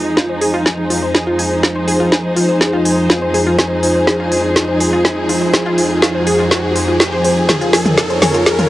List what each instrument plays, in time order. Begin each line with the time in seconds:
Already playing: synth drone F2 F3, analog synth pad F3 F4 G#4 C5, string section F3 D#4 G#4, riser
0.17 synth pluck F4, kick, snare
0.23 string section C5
0.29 synth pluck C5
0.41 synth pluck G#4, open hi-hat
0.54 synth pluck F4
0.66 synth pluck G#5, kick, snare
0.90 synth pluck F4, open hi-hat
1.03 synth pluck C5
1.14 synth pluck G#4, kick, snare
1.27 synth pluck F4
1.39 synth pluck G#5, open hi-hat
1.63 synth pluck F4, kick, snare
1.76 synth pluck C5
1.88 synth pluck G#4, open hi-hat
2.00 synth pluck F4
2.12 synth pluck G#5, kick, snare
2.36 synth pluck F4, open hi-hat
2.49 synth pluck C5
2.61 synth pluck G#4, kick, snare
2.73 synth pluck F4
2.85 synth pluck G#5, open hi-hat
3.10 synth pluck F4, kick, snare
3.22 synth pluck C5
3.34 synth pluck G#4, open hi-hat
3.47 synth pluck F4
3.58 synth pluck G#5, kick, snare
3.83 synth pluck F4, open hi-hat
3.95 synth pluck C5
4.07 synth pluck G#4, kick, snare
4.20 synth pluck F4
4.32 synth pluck G#5, open hi-hat
4.56 synth pluck F4, kick, snare
4.68 synth pluck C5
4.80 synth pluck G#4, open hi-hat
4.93 synth pluck F4
5.05 synth pluck G#5, kick, snare
5.29 synth pluck F4, open hi-hat
5.42 synth pluck C5
5.54 synth pluck G#4, kick, snare
5.66 synth pluck F4
5.78 synth pluck G#5, open hi-hat
6.02 synth pluck F4, kick, snare
6.15 synth pluck C5
6.27 synth pluck G#4, open hi-hat
6.39 synth pluck F4
6.51 synth pluck G#5, kick, snare
6.76 synth pluck C5, open hi-hat
6.88 synth pluck F4
7.00 kick, snare
7.12 synth pluck C5
7.24 synth pluck C5, open hi-hat
7.49 analog synth pad F4 A#4 C#5, synth pluck G#4, kick, snare, closed hi-hat, mid tom
7.61 synth pluck F4, closed hi-hat
7.73 synth pluck G#5, snare, open hi-hat
7.86 closed hi-hat, mid tom
7.97 synth pluck F4, kick, snare, closed hi-hat
8.10 synth pluck C5, string section C#5, closed hi-hat
8.22 synth pluck G#4, snare, open hi-hat, mid tom
8.34 synth pluck F4, closed hi-hat
8.46 synth pluck G#4, kick, snare, closed hi-hat
8.59 synth pluck F4, closed hi-hat, mid tom